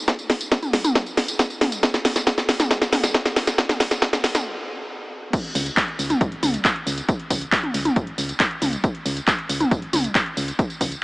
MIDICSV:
0, 0, Header, 1, 3, 480
1, 0, Start_track
1, 0, Tempo, 437956
1, 85, Time_signature, 4, 2, 24, 8
1, 12095, End_track
2, 0, Start_track
2, 0, Title_t, "FM bass"
2, 0, Program_c, 0, 39
2, 6084, Note_on_c, 0, 37, 100
2, 6248, Note_off_c, 0, 37, 0
2, 6564, Note_on_c, 0, 37, 87
2, 6728, Note_off_c, 0, 37, 0
2, 6805, Note_on_c, 0, 32, 89
2, 6969, Note_off_c, 0, 32, 0
2, 7045, Note_on_c, 0, 37, 87
2, 7209, Note_off_c, 0, 37, 0
2, 7525, Note_on_c, 0, 37, 97
2, 7688, Note_off_c, 0, 37, 0
2, 8006, Note_on_c, 0, 37, 98
2, 8169, Note_off_c, 0, 37, 0
2, 8484, Note_on_c, 0, 37, 87
2, 8648, Note_off_c, 0, 37, 0
2, 8726, Note_on_c, 0, 32, 90
2, 8889, Note_off_c, 0, 32, 0
2, 8965, Note_on_c, 0, 37, 89
2, 9128, Note_off_c, 0, 37, 0
2, 9445, Note_on_c, 0, 37, 98
2, 9608, Note_off_c, 0, 37, 0
2, 9924, Note_on_c, 0, 37, 101
2, 10088, Note_off_c, 0, 37, 0
2, 10405, Note_on_c, 0, 37, 86
2, 10568, Note_off_c, 0, 37, 0
2, 10646, Note_on_c, 0, 32, 90
2, 10809, Note_off_c, 0, 32, 0
2, 10884, Note_on_c, 0, 37, 87
2, 11048, Note_off_c, 0, 37, 0
2, 11364, Note_on_c, 0, 37, 95
2, 11528, Note_off_c, 0, 37, 0
2, 11846, Note_on_c, 0, 37, 99
2, 12009, Note_off_c, 0, 37, 0
2, 12095, End_track
3, 0, Start_track
3, 0, Title_t, "Drums"
3, 86, Note_on_c, 9, 36, 117
3, 86, Note_on_c, 9, 38, 83
3, 86, Note_on_c, 9, 42, 54
3, 86, Note_on_c, 9, 54, 56
3, 196, Note_off_c, 9, 36, 0
3, 196, Note_off_c, 9, 38, 0
3, 196, Note_off_c, 9, 42, 0
3, 196, Note_off_c, 9, 54, 0
3, 205, Note_on_c, 9, 42, 26
3, 205, Note_on_c, 9, 54, 33
3, 315, Note_off_c, 9, 42, 0
3, 315, Note_off_c, 9, 54, 0
3, 325, Note_on_c, 9, 38, 86
3, 325, Note_on_c, 9, 46, 106
3, 326, Note_on_c, 9, 36, 59
3, 434, Note_off_c, 9, 38, 0
3, 434, Note_off_c, 9, 46, 0
3, 436, Note_off_c, 9, 36, 0
3, 446, Note_on_c, 9, 42, 51
3, 446, Note_on_c, 9, 54, 67
3, 555, Note_off_c, 9, 42, 0
3, 555, Note_off_c, 9, 54, 0
3, 565, Note_on_c, 9, 38, 87
3, 565, Note_on_c, 9, 42, 55
3, 565, Note_on_c, 9, 54, 56
3, 566, Note_on_c, 9, 36, 114
3, 675, Note_off_c, 9, 38, 0
3, 675, Note_off_c, 9, 42, 0
3, 675, Note_off_c, 9, 54, 0
3, 676, Note_off_c, 9, 36, 0
3, 685, Note_on_c, 9, 42, 27
3, 685, Note_on_c, 9, 47, 62
3, 685, Note_on_c, 9, 54, 34
3, 795, Note_off_c, 9, 42, 0
3, 795, Note_off_c, 9, 47, 0
3, 795, Note_off_c, 9, 54, 0
3, 804, Note_on_c, 9, 38, 87
3, 804, Note_on_c, 9, 46, 100
3, 914, Note_off_c, 9, 38, 0
3, 914, Note_off_c, 9, 46, 0
3, 925, Note_on_c, 9, 42, 52
3, 925, Note_on_c, 9, 47, 80
3, 925, Note_on_c, 9, 54, 65
3, 1035, Note_off_c, 9, 42, 0
3, 1035, Note_off_c, 9, 47, 0
3, 1035, Note_off_c, 9, 54, 0
3, 1045, Note_on_c, 9, 38, 88
3, 1045, Note_on_c, 9, 42, 51
3, 1045, Note_on_c, 9, 54, 55
3, 1046, Note_on_c, 9, 36, 118
3, 1155, Note_off_c, 9, 38, 0
3, 1155, Note_off_c, 9, 42, 0
3, 1155, Note_off_c, 9, 54, 0
3, 1156, Note_off_c, 9, 36, 0
3, 1166, Note_on_c, 9, 42, 27
3, 1166, Note_on_c, 9, 54, 35
3, 1276, Note_off_c, 9, 42, 0
3, 1276, Note_off_c, 9, 54, 0
3, 1286, Note_on_c, 9, 38, 87
3, 1286, Note_on_c, 9, 46, 98
3, 1395, Note_off_c, 9, 38, 0
3, 1395, Note_off_c, 9, 46, 0
3, 1406, Note_on_c, 9, 42, 54
3, 1406, Note_on_c, 9, 54, 67
3, 1516, Note_off_c, 9, 42, 0
3, 1516, Note_off_c, 9, 54, 0
3, 1526, Note_on_c, 9, 36, 115
3, 1526, Note_on_c, 9, 38, 89
3, 1526, Note_on_c, 9, 42, 53
3, 1526, Note_on_c, 9, 54, 57
3, 1635, Note_off_c, 9, 36, 0
3, 1636, Note_off_c, 9, 38, 0
3, 1636, Note_off_c, 9, 42, 0
3, 1636, Note_off_c, 9, 54, 0
3, 1646, Note_on_c, 9, 42, 25
3, 1646, Note_on_c, 9, 54, 35
3, 1756, Note_off_c, 9, 42, 0
3, 1756, Note_off_c, 9, 54, 0
3, 1767, Note_on_c, 9, 38, 89
3, 1767, Note_on_c, 9, 46, 100
3, 1767, Note_on_c, 9, 47, 63
3, 1876, Note_off_c, 9, 38, 0
3, 1876, Note_off_c, 9, 46, 0
3, 1876, Note_off_c, 9, 47, 0
3, 1886, Note_on_c, 9, 42, 53
3, 1886, Note_on_c, 9, 54, 67
3, 1996, Note_off_c, 9, 42, 0
3, 1996, Note_off_c, 9, 54, 0
3, 2006, Note_on_c, 9, 36, 114
3, 2007, Note_on_c, 9, 38, 97
3, 2007, Note_on_c, 9, 42, 56
3, 2007, Note_on_c, 9, 54, 56
3, 2115, Note_off_c, 9, 36, 0
3, 2116, Note_off_c, 9, 38, 0
3, 2116, Note_off_c, 9, 42, 0
3, 2116, Note_off_c, 9, 54, 0
3, 2127, Note_on_c, 9, 38, 82
3, 2127, Note_on_c, 9, 42, 27
3, 2127, Note_on_c, 9, 54, 32
3, 2236, Note_off_c, 9, 38, 0
3, 2236, Note_off_c, 9, 42, 0
3, 2236, Note_off_c, 9, 54, 0
3, 2246, Note_on_c, 9, 38, 95
3, 2246, Note_on_c, 9, 46, 100
3, 2356, Note_off_c, 9, 38, 0
3, 2356, Note_off_c, 9, 46, 0
3, 2365, Note_on_c, 9, 38, 82
3, 2365, Note_on_c, 9, 42, 54
3, 2365, Note_on_c, 9, 54, 65
3, 2475, Note_off_c, 9, 38, 0
3, 2475, Note_off_c, 9, 42, 0
3, 2475, Note_off_c, 9, 54, 0
3, 2486, Note_on_c, 9, 36, 116
3, 2486, Note_on_c, 9, 38, 99
3, 2486, Note_on_c, 9, 42, 55
3, 2486, Note_on_c, 9, 54, 56
3, 2595, Note_off_c, 9, 36, 0
3, 2595, Note_off_c, 9, 38, 0
3, 2595, Note_off_c, 9, 42, 0
3, 2595, Note_off_c, 9, 54, 0
3, 2606, Note_on_c, 9, 38, 83
3, 2606, Note_on_c, 9, 42, 27
3, 2606, Note_on_c, 9, 54, 33
3, 2716, Note_off_c, 9, 38, 0
3, 2716, Note_off_c, 9, 42, 0
3, 2716, Note_off_c, 9, 54, 0
3, 2726, Note_on_c, 9, 38, 99
3, 2726, Note_on_c, 9, 46, 99
3, 2836, Note_off_c, 9, 38, 0
3, 2836, Note_off_c, 9, 46, 0
3, 2846, Note_on_c, 9, 38, 84
3, 2846, Note_on_c, 9, 42, 54
3, 2846, Note_on_c, 9, 47, 79
3, 2846, Note_on_c, 9, 54, 66
3, 2956, Note_off_c, 9, 38, 0
3, 2956, Note_off_c, 9, 42, 0
3, 2956, Note_off_c, 9, 47, 0
3, 2956, Note_off_c, 9, 54, 0
3, 2966, Note_on_c, 9, 36, 114
3, 2967, Note_on_c, 9, 38, 98
3, 2967, Note_on_c, 9, 42, 54
3, 2967, Note_on_c, 9, 54, 54
3, 3075, Note_off_c, 9, 36, 0
3, 3076, Note_off_c, 9, 38, 0
3, 3076, Note_off_c, 9, 42, 0
3, 3076, Note_off_c, 9, 54, 0
3, 3086, Note_on_c, 9, 38, 90
3, 3086, Note_on_c, 9, 42, 27
3, 3086, Note_on_c, 9, 54, 35
3, 3196, Note_off_c, 9, 38, 0
3, 3196, Note_off_c, 9, 42, 0
3, 3196, Note_off_c, 9, 54, 0
3, 3207, Note_on_c, 9, 38, 98
3, 3207, Note_on_c, 9, 46, 103
3, 3207, Note_on_c, 9, 47, 76
3, 3316, Note_off_c, 9, 38, 0
3, 3316, Note_off_c, 9, 46, 0
3, 3316, Note_off_c, 9, 47, 0
3, 3327, Note_on_c, 9, 38, 92
3, 3327, Note_on_c, 9, 42, 55
3, 3327, Note_on_c, 9, 54, 66
3, 3437, Note_off_c, 9, 38, 0
3, 3437, Note_off_c, 9, 42, 0
3, 3437, Note_off_c, 9, 54, 0
3, 3446, Note_on_c, 9, 36, 114
3, 3447, Note_on_c, 9, 38, 101
3, 3447, Note_on_c, 9, 42, 55
3, 3447, Note_on_c, 9, 54, 56
3, 3555, Note_off_c, 9, 36, 0
3, 3556, Note_off_c, 9, 38, 0
3, 3556, Note_off_c, 9, 42, 0
3, 3556, Note_off_c, 9, 54, 0
3, 3567, Note_on_c, 9, 38, 91
3, 3567, Note_on_c, 9, 42, 27
3, 3567, Note_on_c, 9, 54, 34
3, 3677, Note_off_c, 9, 38, 0
3, 3677, Note_off_c, 9, 42, 0
3, 3677, Note_off_c, 9, 54, 0
3, 3687, Note_on_c, 9, 38, 98
3, 3687, Note_on_c, 9, 46, 97
3, 3797, Note_off_c, 9, 38, 0
3, 3797, Note_off_c, 9, 46, 0
3, 3807, Note_on_c, 9, 38, 88
3, 3807, Note_on_c, 9, 42, 55
3, 3807, Note_on_c, 9, 54, 68
3, 3917, Note_off_c, 9, 38, 0
3, 3917, Note_off_c, 9, 42, 0
3, 3917, Note_off_c, 9, 54, 0
3, 3926, Note_on_c, 9, 36, 118
3, 3927, Note_on_c, 9, 38, 107
3, 3927, Note_on_c, 9, 42, 58
3, 3927, Note_on_c, 9, 54, 54
3, 4035, Note_off_c, 9, 36, 0
3, 4037, Note_off_c, 9, 38, 0
3, 4037, Note_off_c, 9, 42, 0
3, 4037, Note_off_c, 9, 54, 0
3, 4048, Note_on_c, 9, 38, 90
3, 4048, Note_on_c, 9, 42, 29
3, 4048, Note_on_c, 9, 47, 62
3, 4048, Note_on_c, 9, 54, 31
3, 4157, Note_off_c, 9, 38, 0
3, 4157, Note_off_c, 9, 42, 0
3, 4157, Note_off_c, 9, 47, 0
3, 4157, Note_off_c, 9, 54, 0
3, 4165, Note_on_c, 9, 36, 59
3, 4167, Note_on_c, 9, 38, 104
3, 4167, Note_on_c, 9, 46, 106
3, 4275, Note_off_c, 9, 36, 0
3, 4277, Note_off_c, 9, 38, 0
3, 4277, Note_off_c, 9, 46, 0
3, 4287, Note_on_c, 9, 38, 88
3, 4287, Note_on_c, 9, 42, 56
3, 4287, Note_on_c, 9, 54, 61
3, 4396, Note_off_c, 9, 38, 0
3, 4396, Note_off_c, 9, 42, 0
3, 4396, Note_off_c, 9, 54, 0
3, 4405, Note_on_c, 9, 36, 120
3, 4407, Note_on_c, 9, 38, 106
3, 4407, Note_on_c, 9, 42, 58
3, 4407, Note_on_c, 9, 54, 53
3, 4515, Note_off_c, 9, 36, 0
3, 4517, Note_off_c, 9, 38, 0
3, 4517, Note_off_c, 9, 42, 0
3, 4517, Note_off_c, 9, 54, 0
3, 4527, Note_on_c, 9, 38, 94
3, 4527, Note_on_c, 9, 42, 28
3, 4527, Note_on_c, 9, 47, 57
3, 4527, Note_on_c, 9, 54, 33
3, 4636, Note_off_c, 9, 38, 0
3, 4636, Note_off_c, 9, 42, 0
3, 4636, Note_off_c, 9, 47, 0
3, 4636, Note_off_c, 9, 54, 0
3, 4646, Note_on_c, 9, 38, 105
3, 4646, Note_on_c, 9, 46, 105
3, 4755, Note_off_c, 9, 38, 0
3, 4755, Note_off_c, 9, 46, 0
3, 4766, Note_on_c, 9, 38, 92
3, 4766, Note_on_c, 9, 42, 56
3, 4766, Note_on_c, 9, 47, 74
3, 4766, Note_on_c, 9, 54, 64
3, 4875, Note_off_c, 9, 38, 0
3, 4875, Note_off_c, 9, 42, 0
3, 4875, Note_off_c, 9, 47, 0
3, 4875, Note_off_c, 9, 54, 0
3, 5845, Note_on_c, 9, 36, 123
3, 5845, Note_on_c, 9, 42, 58
3, 5845, Note_on_c, 9, 49, 103
3, 5845, Note_on_c, 9, 54, 42
3, 5955, Note_off_c, 9, 36, 0
3, 5955, Note_off_c, 9, 42, 0
3, 5955, Note_off_c, 9, 49, 0
3, 5955, Note_off_c, 9, 54, 0
3, 5966, Note_on_c, 9, 42, 27
3, 6075, Note_off_c, 9, 42, 0
3, 6085, Note_on_c, 9, 46, 109
3, 6085, Note_on_c, 9, 54, 72
3, 6195, Note_off_c, 9, 46, 0
3, 6195, Note_off_c, 9, 54, 0
3, 6205, Note_on_c, 9, 42, 54
3, 6205, Note_on_c, 9, 54, 30
3, 6315, Note_off_c, 9, 42, 0
3, 6315, Note_off_c, 9, 54, 0
3, 6325, Note_on_c, 9, 36, 123
3, 6326, Note_on_c, 9, 39, 127
3, 6326, Note_on_c, 9, 42, 57
3, 6326, Note_on_c, 9, 54, 42
3, 6435, Note_off_c, 9, 36, 0
3, 6435, Note_off_c, 9, 39, 0
3, 6435, Note_off_c, 9, 42, 0
3, 6435, Note_off_c, 9, 54, 0
3, 6446, Note_on_c, 9, 42, 28
3, 6556, Note_off_c, 9, 42, 0
3, 6566, Note_on_c, 9, 46, 106
3, 6566, Note_on_c, 9, 54, 74
3, 6675, Note_off_c, 9, 46, 0
3, 6675, Note_off_c, 9, 54, 0
3, 6686, Note_on_c, 9, 42, 54
3, 6686, Note_on_c, 9, 47, 76
3, 6686, Note_on_c, 9, 54, 31
3, 6796, Note_off_c, 9, 42, 0
3, 6796, Note_off_c, 9, 47, 0
3, 6796, Note_off_c, 9, 54, 0
3, 6805, Note_on_c, 9, 36, 118
3, 6805, Note_on_c, 9, 42, 57
3, 6805, Note_on_c, 9, 54, 41
3, 6915, Note_off_c, 9, 36, 0
3, 6915, Note_off_c, 9, 42, 0
3, 6915, Note_off_c, 9, 54, 0
3, 6926, Note_on_c, 9, 42, 29
3, 7035, Note_off_c, 9, 42, 0
3, 7045, Note_on_c, 9, 46, 108
3, 7045, Note_on_c, 9, 47, 76
3, 7045, Note_on_c, 9, 54, 70
3, 7155, Note_off_c, 9, 46, 0
3, 7155, Note_off_c, 9, 47, 0
3, 7155, Note_off_c, 9, 54, 0
3, 7166, Note_on_c, 9, 42, 57
3, 7166, Note_on_c, 9, 54, 31
3, 7276, Note_off_c, 9, 42, 0
3, 7276, Note_off_c, 9, 54, 0
3, 7286, Note_on_c, 9, 36, 121
3, 7286, Note_on_c, 9, 39, 127
3, 7286, Note_on_c, 9, 42, 57
3, 7286, Note_on_c, 9, 54, 41
3, 7395, Note_off_c, 9, 36, 0
3, 7396, Note_off_c, 9, 39, 0
3, 7396, Note_off_c, 9, 42, 0
3, 7396, Note_off_c, 9, 54, 0
3, 7406, Note_on_c, 9, 42, 28
3, 7516, Note_off_c, 9, 42, 0
3, 7526, Note_on_c, 9, 46, 104
3, 7526, Note_on_c, 9, 54, 70
3, 7636, Note_off_c, 9, 46, 0
3, 7636, Note_off_c, 9, 54, 0
3, 7646, Note_on_c, 9, 42, 56
3, 7646, Note_on_c, 9, 54, 31
3, 7756, Note_off_c, 9, 42, 0
3, 7756, Note_off_c, 9, 54, 0
3, 7766, Note_on_c, 9, 36, 122
3, 7766, Note_on_c, 9, 42, 58
3, 7766, Note_on_c, 9, 54, 42
3, 7876, Note_off_c, 9, 36, 0
3, 7876, Note_off_c, 9, 42, 0
3, 7876, Note_off_c, 9, 54, 0
3, 7886, Note_on_c, 9, 42, 27
3, 7996, Note_off_c, 9, 42, 0
3, 8006, Note_on_c, 9, 36, 65
3, 8006, Note_on_c, 9, 46, 110
3, 8006, Note_on_c, 9, 54, 72
3, 8115, Note_off_c, 9, 46, 0
3, 8115, Note_off_c, 9, 54, 0
3, 8116, Note_off_c, 9, 36, 0
3, 8126, Note_on_c, 9, 42, 54
3, 8126, Note_on_c, 9, 54, 30
3, 8236, Note_off_c, 9, 42, 0
3, 8236, Note_off_c, 9, 54, 0
3, 8246, Note_on_c, 9, 36, 127
3, 8246, Note_on_c, 9, 39, 123
3, 8246, Note_on_c, 9, 42, 57
3, 8246, Note_on_c, 9, 54, 41
3, 8356, Note_off_c, 9, 36, 0
3, 8356, Note_off_c, 9, 39, 0
3, 8356, Note_off_c, 9, 42, 0
3, 8356, Note_off_c, 9, 54, 0
3, 8366, Note_on_c, 9, 42, 27
3, 8366, Note_on_c, 9, 47, 62
3, 8476, Note_off_c, 9, 42, 0
3, 8476, Note_off_c, 9, 47, 0
3, 8486, Note_on_c, 9, 46, 110
3, 8486, Note_on_c, 9, 54, 74
3, 8596, Note_off_c, 9, 46, 0
3, 8596, Note_off_c, 9, 54, 0
3, 8606, Note_on_c, 9, 42, 53
3, 8606, Note_on_c, 9, 47, 77
3, 8606, Note_on_c, 9, 54, 29
3, 8716, Note_off_c, 9, 42, 0
3, 8716, Note_off_c, 9, 47, 0
3, 8716, Note_off_c, 9, 54, 0
3, 8726, Note_on_c, 9, 42, 53
3, 8726, Note_on_c, 9, 54, 42
3, 8727, Note_on_c, 9, 36, 121
3, 8836, Note_off_c, 9, 36, 0
3, 8836, Note_off_c, 9, 42, 0
3, 8836, Note_off_c, 9, 54, 0
3, 8846, Note_on_c, 9, 42, 28
3, 8955, Note_off_c, 9, 42, 0
3, 8966, Note_on_c, 9, 46, 112
3, 8966, Note_on_c, 9, 54, 69
3, 9076, Note_off_c, 9, 46, 0
3, 9076, Note_off_c, 9, 54, 0
3, 9086, Note_on_c, 9, 42, 55
3, 9086, Note_on_c, 9, 54, 31
3, 9196, Note_off_c, 9, 42, 0
3, 9196, Note_off_c, 9, 54, 0
3, 9205, Note_on_c, 9, 39, 127
3, 9205, Note_on_c, 9, 42, 54
3, 9205, Note_on_c, 9, 54, 42
3, 9206, Note_on_c, 9, 36, 127
3, 9315, Note_off_c, 9, 39, 0
3, 9315, Note_off_c, 9, 42, 0
3, 9315, Note_off_c, 9, 54, 0
3, 9316, Note_off_c, 9, 36, 0
3, 9326, Note_on_c, 9, 42, 27
3, 9435, Note_off_c, 9, 42, 0
3, 9445, Note_on_c, 9, 46, 109
3, 9445, Note_on_c, 9, 47, 61
3, 9445, Note_on_c, 9, 54, 69
3, 9555, Note_off_c, 9, 46, 0
3, 9555, Note_off_c, 9, 47, 0
3, 9555, Note_off_c, 9, 54, 0
3, 9566, Note_on_c, 9, 42, 53
3, 9566, Note_on_c, 9, 54, 31
3, 9675, Note_off_c, 9, 42, 0
3, 9675, Note_off_c, 9, 54, 0
3, 9686, Note_on_c, 9, 36, 127
3, 9686, Note_on_c, 9, 42, 53
3, 9686, Note_on_c, 9, 54, 43
3, 9795, Note_off_c, 9, 42, 0
3, 9795, Note_off_c, 9, 54, 0
3, 9796, Note_off_c, 9, 36, 0
3, 9806, Note_on_c, 9, 42, 27
3, 9916, Note_off_c, 9, 42, 0
3, 9926, Note_on_c, 9, 46, 115
3, 9926, Note_on_c, 9, 54, 75
3, 10036, Note_off_c, 9, 46, 0
3, 10036, Note_off_c, 9, 54, 0
3, 10046, Note_on_c, 9, 42, 52
3, 10046, Note_on_c, 9, 54, 30
3, 10156, Note_off_c, 9, 42, 0
3, 10156, Note_off_c, 9, 54, 0
3, 10166, Note_on_c, 9, 36, 126
3, 10166, Note_on_c, 9, 39, 127
3, 10166, Note_on_c, 9, 42, 53
3, 10166, Note_on_c, 9, 54, 43
3, 10276, Note_off_c, 9, 36, 0
3, 10276, Note_off_c, 9, 39, 0
3, 10276, Note_off_c, 9, 42, 0
3, 10276, Note_off_c, 9, 54, 0
3, 10286, Note_on_c, 9, 42, 26
3, 10396, Note_off_c, 9, 42, 0
3, 10406, Note_on_c, 9, 46, 110
3, 10406, Note_on_c, 9, 54, 73
3, 10516, Note_off_c, 9, 46, 0
3, 10516, Note_off_c, 9, 54, 0
3, 10526, Note_on_c, 9, 42, 51
3, 10526, Note_on_c, 9, 47, 78
3, 10526, Note_on_c, 9, 54, 31
3, 10636, Note_off_c, 9, 42, 0
3, 10636, Note_off_c, 9, 47, 0
3, 10636, Note_off_c, 9, 54, 0
3, 10646, Note_on_c, 9, 36, 127
3, 10646, Note_on_c, 9, 42, 54
3, 10646, Note_on_c, 9, 54, 42
3, 10755, Note_off_c, 9, 42, 0
3, 10755, Note_off_c, 9, 54, 0
3, 10756, Note_off_c, 9, 36, 0
3, 10766, Note_on_c, 9, 42, 27
3, 10875, Note_off_c, 9, 42, 0
3, 10885, Note_on_c, 9, 46, 111
3, 10885, Note_on_c, 9, 47, 85
3, 10885, Note_on_c, 9, 54, 72
3, 10995, Note_off_c, 9, 46, 0
3, 10995, Note_off_c, 9, 47, 0
3, 10995, Note_off_c, 9, 54, 0
3, 11006, Note_on_c, 9, 42, 53
3, 11006, Note_on_c, 9, 54, 32
3, 11116, Note_off_c, 9, 42, 0
3, 11116, Note_off_c, 9, 54, 0
3, 11126, Note_on_c, 9, 36, 127
3, 11126, Note_on_c, 9, 39, 124
3, 11126, Note_on_c, 9, 42, 52
3, 11126, Note_on_c, 9, 54, 41
3, 11236, Note_off_c, 9, 36, 0
3, 11236, Note_off_c, 9, 39, 0
3, 11236, Note_off_c, 9, 42, 0
3, 11236, Note_off_c, 9, 54, 0
3, 11246, Note_on_c, 9, 42, 26
3, 11356, Note_off_c, 9, 42, 0
3, 11367, Note_on_c, 9, 46, 109
3, 11367, Note_on_c, 9, 54, 70
3, 11476, Note_off_c, 9, 46, 0
3, 11476, Note_off_c, 9, 54, 0
3, 11487, Note_on_c, 9, 42, 51
3, 11487, Note_on_c, 9, 54, 31
3, 11597, Note_off_c, 9, 42, 0
3, 11597, Note_off_c, 9, 54, 0
3, 11606, Note_on_c, 9, 36, 121
3, 11607, Note_on_c, 9, 42, 53
3, 11607, Note_on_c, 9, 54, 45
3, 11716, Note_off_c, 9, 36, 0
3, 11717, Note_off_c, 9, 42, 0
3, 11717, Note_off_c, 9, 54, 0
3, 11727, Note_on_c, 9, 42, 26
3, 11727, Note_on_c, 9, 54, 32
3, 11836, Note_off_c, 9, 42, 0
3, 11836, Note_off_c, 9, 54, 0
3, 11846, Note_on_c, 9, 36, 64
3, 11846, Note_on_c, 9, 46, 116
3, 11846, Note_on_c, 9, 54, 76
3, 11956, Note_off_c, 9, 36, 0
3, 11956, Note_off_c, 9, 46, 0
3, 11956, Note_off_c, 9, 54, 0
3, 11966, Note_on_c, 9, 42, 50
3, 11966, Note_on_c, 9, 54, 33
3, 12076, Note_off_c, 9, 42, 0
3, 12076, Note_off_c, 9, 54, 0
3, 12095, End_track
0, 0, End_of_file